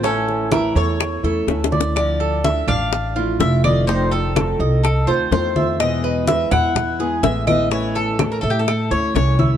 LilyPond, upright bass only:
\new Staff \with { instrumentName = "Upright bass" } { \clef bass \time 4/4 \key a \phrygian \tempo 4 = 125 a,,4. e,4 e,8 d,4~ | \key d \minor d,4. a,,4. f,,4~ | f,,4. c,4 d,8 e,4~ | e,4. e,4. a,,4~ |
a,,4. a,4 d,8 c,4 | }